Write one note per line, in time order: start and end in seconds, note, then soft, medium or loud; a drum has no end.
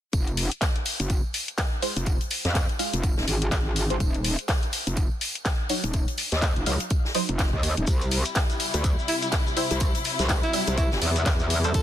0.13 0.49 F1 medium
0.13 kick loud
0.13 closed hi-hat medium
0.13 tambourine medium
0.27 closed hi-hat soft
0.37 open hi-hat loud
0.37 tambourine medium
0.52 closed hi-hat medium
0.61 kick loud
0.61 snare loud
0.61 clap loud
0.61 closed hi-hat medium
0.61 tambourine medium
0.76 closed hi-hat soft
0.86 open hi-hat medium
0.86 tambourine medium
1.00 1.22 F#1 medium
1.00 closed hi-hat medium
1.00 closed hi-hat soft
1.10 kick loud
1.10 closed hi-hat medium
1.10 tambourine medium
1.34 open hi-hat loud
1.34 tambourine medium
1.48 closed hi-hat medium
1.58 kick loud
1.58 snare loud
1.58 clap loud
1.58 closed hi-hat medium
1.58 tambourine medium
1.82 1.93 G#3 medium
1.82 1.93 F4 medium
1.82 1.93 C5 loud
1.82 open hi-hat medium
1.82 tambourine medium
1.96 2.18 F1 medium
1.96 closed hi-hat soft
2.06 kick loud
2.06 closed hi-hat medium
2.06 tambourine medium
2.21 closed hi-hat soft
2.30 open hi-hat loud
2.30 tambourine medium
2.45 2.67 F2 medium
2.45 snare medium
2.45 closed hi-hat soft
2.55 kick loud
2.55 snare loud
2.55 clap loud
2.55 closed hi-hat medium
2.55 tambourine medium
2.69 closed hi-hat soft
2.79 2.95 G#3 medium
2.79 2.95 F4 medium
2.79 2.95 F5 medium
2.79 open hi-hat medium
2.79 tambourine medium
2.93 3.15 F1 loud
2.93 closed hi-hat soft
2.93 closed hi-hat medium
3.03 kick loud
3.03 closed hi-hat medium
3.03 tambourine medium
3.17 3.26 D#1 medium
3.17 snare medium
3.28 3.50 G#1 medium
3.28 open hi-hat loud
3.28 tambourine medium
3.42 closed hi-hat medium
3.51 3.99 G#1 medium
3.51 kick loud
3.51 snare loud
3.51 clap loud
3.51 closed hi-hat medium
3.51 tambourine medium
3.76 open hi-hat medium
3.76 tambourine medium
3.90 3.99 G#3 medium
3.90 3.99 F4 medium
3.90 3.99 C5 loud
3.90 closed hi-hat medium
4.00 4.36 D#1 loud
4.00 kick loud
4.00 closed hi-hat medium
4.00 tambourine medium
4.14 closed hi-hat soft
4.24 open hi-hat loud
4.24 tambourine medium
4.39 closed hi-hat soft
4.48 kick loud
4.48 snare loud
4.48 clap loud
4.48 closed hi-hat medium
4.48 tambourine medium
4.63 closed hi-hat soft
4.73 open hi-hat medium
4.73 tambourine medium
4.87 5.09 F1 medium
4.87 closed hi-hat soft
4.97 kick loud
4.97 closed hi-hat medium
4.97 tambourine medium
5.21 open hi-hat loud
5.21 tambourine medium
5.35 closed hi-hat soft
5.45 kick loud
5.45 snare loud
5.45 clap loud
5.45 closed hi-hat medium
5.45 tambourine medium
5.69 5.80 F#3 medium
5.69 5.80 D#4 medium
5.69 5.80 C#5 loud
5.69 open hi-hat loud
5.69 tambourine medium
5.84 6.06 D#1 medium
5.84 closed hi-hat soft
5.93 kick loud
5.93 closed hi-hat medium
5.93 tambourine medium
6.08 closed hi-hat soft
6.18 open hi-hat loud
6.18 tambourine medium
6.32 6.54 D#2 medium
6.32 snare medium
6.32 closed hi-hat soft
6.42 kick loud
6.42 snare loud
6.42 clap loud
6.42 closed hi-hat medium
6.42 tambourine medium
6.56 6.65 F1 medium
6.56 closed hi-hat soft
6.66 6.78 C#2 medium
6.66 6.83 F#3 medium
6.66 6.83 D#4 medium
6.66 6.83 F5 medium
6.66 open hi-hat medium
6.66 tambourine medium
6.80 closed hi-hat soft
6.90 kick loud
6.90 closed hi-hat medium
6.90 tambourine medium
7.05 snare soft
7.14 7.31 F#3 medium
7.14 7.31 D#4 medium
7.14 7.31 C5 medium
7.14 open hi-hat loud
7.14 tambourine medium
7.29 7.51 F1 loud
7.29 closed hi-hat soft
7.39 kick loud
7.39 snare loud
7.39 clap loud
7.39 closed hi-hat medium
7.39 tambourine medium
7.53 7.75 D#2 medium
7.53 kick medium
7.63 open hi-hat medium
7.63 tambourine medium
7.77 7.86 D#1 medium
7.77 closed hi-hat soft
7.87 8.23 C2 loud
7.87 11.71 C3 medium
7.87 9.79 G3 medium
7.87 11.71 E4 medium
7.87 kick loud
7.87 closed hi-hat medium
7.87 tambourine medium
7.87 maracas medium
8.01 closed hi-hat soft
8.01 maracas soft
8.11 open hi-hat loud
8.11 tambourine medium
8.25 closed hi-hat soft
8.25 maracas medium
8.35 kick loud
8.35 snare loud
8.35 clap loud
8.35 closed hi-hat medium
8.35 tambourine medium
8.35 maracas medium
8.50 closed hi-hat soft
8.50 maracas soft
8.60 open hi-hat medium
8.60 tambourine medium
8.74 8.96 D2 medium
8.74 closed hi-hat soft
8.74 maracas medium
8.84 kick loud
8.84 closed hi-hat medium
8.84 tambourine medium
8.84 maracas medium
8.99 maracas soft
9.08 9.17 E4 medium
9.08 open hi-hat loud
9.08 tambourine medium
9.22 9.29 E4 medium
9.22 closed hi-hat soft
9.22 maracas medium
9.32 kick loud
9.32 snare loud
9.32 clap loud
9.32 closed hi-hat medium
9.32 tambourine medium
9.32 maracas medium
9.47 maracas soft
9.57 9.67 G3 medium
9.57 9.67 E4 medium
9.57 9.66 E4 medium
9.57 9.67 C5 loud
9.57 open hi-hat loud
9.57 tambourine medium
9.70 9.93 C2 medium
9.70 9.77 E4 medium
9.70 closed hi-hat soft
9.70 maracas medium
9.80 11.73 F#3 medium
9.80 kick loud
9.80 closed hi-hat medium
9.80 tambourine medium
9.80 maracas medium
9.95 closed hi-hat soft
9.95 maracas soft
10.04 open hi-hat loud
10.04 tambourine medium
10.19 10.41 C2 medium
10.19 snare soft
10.19 closed hi-hat soft
10.19 maracas medium
10.29 kick loud
10.29 snare loud
10.29 clap loud
10.29 closed hi-hat medium
10.29 tambourine medium
10.29 maracas medium
10.43 10.76 E4 medium
10.43 closed hi-hat soft
10.43 maracas soft
10.53 10.70 G3 medium
10.53 10.70 E4 medium
10.53 10.70 E5 medium
10.53 open hi-hat medium
10.53 tambourine medium
10.67 10.90 C2 medium
10.67 closed hi-hat soft
10.67 closed hi-hat medium
10.67 maracas medium
10.77 10.91 E4 medium
10.77 kick loud
10.77 closed hi-hat medium
10.77 tambourine medium
10.77 maracas medium
10.92 11.00 G1 medium
10.92 snare medium
10.92 maracas soft
11.01 11.24 E2 loud
11.01 open hi-hat loud
11.01 tambourine medium
11.16 closed hi-hat medium
11.16 maracas medium
11.26 11.73 E2 medium
11.26 kick loud
11.26 snare loud
11.26 clap loud
11.26 closed hi-hat medium
11.26 tambourine medium
11.26 maracas medium
11.39 maracas soft
11.50 open hi-hat medium
11.50 tambourine medium
11.64 11.73 G3 medium
11.64 11.73 E4 medium
11.64 11.71 A4 medium
11.64 11.73 C5 loud
11.64 closed hi-hat soft
11.64 maracas medium
11.74 11.82 A#1 loud
11.74 11.82 A#3 medium
11.74 11.82 C#4 medium
11.74 11.82 F4 medium
11.74 11.82 A4 medium
11.74 kick loud
11.74 closed hi-hat medium
11.74 tambourine medium
11.74 maracas medium